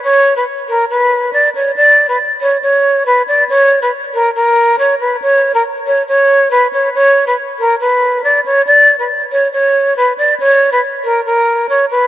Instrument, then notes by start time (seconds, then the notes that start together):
flute
0.04 C#5
0.36 B4
0.69 A#4
0.90 B4
1.33 D5
1.55 C#5
1.76 D5
2.09 B4
2.41 C#5
2.63 C#5
3.06 B4
3.28 D5
3.49 C#5
3.82 B4
4.14 A#4
4.36 A#4
4.79 C#5
5.00 B4
5.22 C#5
5.54 A#4
5.87 C#5
6.08 C#5
6.51 B4
6.73 C#5
6.95 C#5
7.27 B4
7.59 A#4
7.81 B4
8.24 D5
8.46 C#5
8.67 D5
8.99 B4
9.32 C#5
9.53 C#5
9.97 B4
10.18 D5
10.40 C#5
10.72 B4
11.04 A#4
11.26 A#4
11.69 C#5
11.91 B4